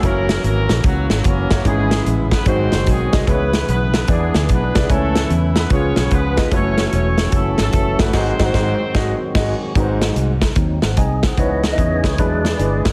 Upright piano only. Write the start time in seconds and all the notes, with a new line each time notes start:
0.02 A#3 E4 F#4 C#5
1.51 A#3 E4 F#4 C#5
1.65 G#2 G#3 C#4 E4 C#5
2.46 G#2 G#3 D#4 F#4 C5
3.13 G#3 D#4 F#4 D#5
3.27 C#3 B3 E4 G#4 C#5
4.08 E3 B3 E4 G#4 D5
4.75 B3 E4 G#4 D5
4.89 C#3 A3 E4 C#5 G#5
5.70 C#3 B3 F4 G#4 C#5
6.37 B3 F4 G#4 D#5
6.51 A3 E4 F#4 C#5
7.99 A3 E4 F#4 A4
8.13 G#2 G#3 D#4 F#4
8.20 C5
8.40 G#2 G#3 D#4 F#4
8.45 C5
8.54 G#2 G#3 D#4 F#4
8.60 C5
8.95 G#3 D#4 F#4 D#5
9.35 G#3 D#4 F#4 D#5
9.76 G#2 G#3 D#4 F#4 B4
9.82 C5
10.83 C5 F#5
10.97 D#5 G#5
11.24 C5 F#5
11.38 C#3 B3 D#4 E4 C#5
11.71 B3 D#4 E4 D#5
12.19 E3 G#3 D4 E4 B4
12.58 G#3 D4 E4 B4